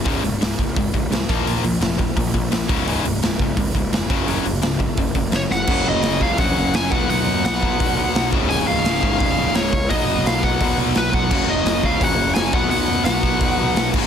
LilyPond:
<<
  \new Staff \with { instrumentName = "Lead electric guitar" } { \time 4/4 \key ges \lydian \tempo 4 = 171 r1 | r1 | r1 | r2. des''8 ges''8~ |
\key ces \lydian ges''8 ees''4 f''8 ges''4 aes''8 ges''8 | ges''4 ges''2~ ges''8 r8 | aes''8 f''4. f''4 des''4 | ees''4 f''8 ges''4 r8 ces''8 ges''8~ |
ges''8 ees''4 f''8 ges''4 aes''8 ges''8 | ges''4 ges''2~ ges''8 r8 | }
  \new Staff \with { instrumentName = "Distorted electric guitar" } { \clef bass \time 4/4 \key ges \lydian r1 | r1 | r1 | r1 |
\key ces \lydian <ges, des ges>4. <ges, des ges>4. <ges, des ges>8 <ces ges ces'>8~ | <ces ges ces'>4 <ces ges ces'>4. <ces ges ces'>4 <des, aes, des>8~ | <des, aes, des>4 <des, aes, des>4. <des, aes, des>4 r8 | <ces ges ces'>4. <ces ges ces'>4. <ces ges ces'>4 |
<ges, des ges>4. <ges, des ges>4. <ges, des ges>8 <ces ges ces'>8~ | <ces ges ces'>4 <ces ges ces'>4. <ces ges ces'>4 <des, aes, des>8 | }
  \new Staff \with { instrumentName = "Distorted electric guitar" } { \clef bass \time 4/4 \key ges \lydian <des, aes, des>8 <des, aes,>8 <des, aes,>8 <des, aes,>8 <des, aes,>8 <des, aes,>8 <des, aes,>8 <bes, f bes>8 | <bes, f bes>8 <bes, f>8 <bes, f>8 <bes, f>8 <bes, f>8 <bes, f>8 <bes, f>8 <des, aes, des>8 | <des, aes, des>8 <des, aes,>8 <des, aes,>8 <des, aes,>8 <des, aes,>8 <des, aes,>8 <des, aes,>8 <ges, des ges>8 | <ges, des ges>8 <ges, des>8 <ges, des>8 <ges, des>8 <ges, des>8 <ges, des>8 <ges, des>8 <ges, des>8 |
\key ces \lydian <ges, des ges>2 <ges, des ges>4. <ces ges ces'>8~ | <ces ges ces'>4. <ces ges ces'>2 <des, aes, des>8~ | <des, aes, des>4. <des, aes, des>2 r8 | <ces ges ces'>2 <ces ges ces'>2 |
<ges, des ges>2 <ges, des ges>4. <ces ges ces'>8~ | <ces ges ces'>4. <ces ges ces'>2 <des, aes, des>8 | }
  \new Staff \with { instrumentName = "Overdriven electric guitar" } { \clef bass \time 4/4 \key ges \lydian <des, aes, des>8 <des, aes,>8 <des, aes,>8 <des, aes,>8 <des, aes,>8 <des, aes,>8 <des, aes,>8 <bes, f bes>8 | <bes, f bes>8 <bes, f>8 <bes, f>8 <bes, f>8 <bes, f>8 <bes, f>8 <bes, f>8 <des, aes, des>8 | <des, aes, des>8 <des, aes,>8 <des, aes,>8 <des, aes,>8 <des, aes,>8 <des, aes,>8 <des, aes,>8 <ges, des ges>8 | <ges, des ges>8 <ges, des>8 <ges, des>8 <ges, des>8 <ges, des>8 <ges, des>8 <ges, des>8 <ges, des>8 |
\key ces \lydian <ges, des ges>4. <ges, des ges>2 <ces ges ces'>8~ | <ces ges ces'>4 <ces ges ces'>2~ <ces ges ces'>8 <des, aes, des>8~ | <des, aes, des>4 <des, aes, des>2~ <des, aes, des>8 r8 | <ces ges ces'>4. <ces ges ces'>2~ <ces ges ces'>8 |
<ges, des ges>4. <ges, des ges>2 <ces ges ces'>8~ | <ces ges ces'>4 <ces ges ces'>2~ <ces ges ces'>8 <des, aes, des>8 | }
  \new Staff \with { instrumentName = "Picked electric bass" } { \clef bass \time 4/4 \key ges \lydian des,,8 des,,8 des,,8 des,,8 aes,,8 des,,8 c,8 bes,,8 | bes,,8 bes,,8 f,,4 bes,,8 bes,,8 bes,,8 des,,8 | des,,8 des,,8 des,,8 des,,8 aes,,8 des,,8 f,,8 ges,,8 | ges,,8 ges,,8 des,,4 ges,,8 ges,,8 ges,,8 ges,,8 |
\key ces \lydian ges,,8 ges,,8 ges,,8 des,8 bes,,8 ges,,8 ges,,8 ces,8 | ces,8 ges,8 ces,4 ces,8 ces,8 ces,8 des,,8 | des,,8 des,,8 des,,8 aes,,8 f,,8 des,,8 des,,8 des,8 | ces,8 ges,,8 ces,4 ces,8 ces,8 ces,8 ces,8 |
ges,,8 ges,,8 ges,,8 des,8 bes,,8 ges,,8 ges,,8 ces,8 | ces,8 ges,8 ces,4 ces,8 ces,8 ces,8 des,,8 | }
  \new DrumStaff \with { instrumentName = "Drums" } \drummode { \time 4/4 <hho bd>8 hho8 <hho sn>8 <hho bd>8 <hho bd>8 <hho bd>8 <hho sn>8 <hho bd>8 | hho8 hho8 <hho sn>8 <hho bd>8 <hho bd>8 <hho bd>8 <hho sn>8 <hho bd>8 | hho8 hho8 <hho sn>8 <hho bd>8 <hho bd>8 <hho bd>8 <hho sn>8 <hho bd>8 | hho8 hho8 <hho sn>8 <hho bd>8 <hho bd>8 <hho bd>8 <hho sn>8 sn8 |
<cymc bd>4 <hho sn>8 bd8 <hho bd>4 <hho sn>8 bd8 | hho4 <hho sn>8 bd8 <hho bd>4 <hho sn>8 bd8 | hho4 <hho sn>8 bd8 <hho bd>4 <hho sn>8 bd8 | <hho bd>4 <hho sn>8 bd8 <hho bd>4 <hho sn>8 bd8 |
<cymc bd>4 <hho sn>8 bd8 <hho bd>4 <hho sn>8 bd8 | hho4 <hho sn>8 bd8 <hho bd>4 <hho sn>8 <cymc bd>8 | }
>>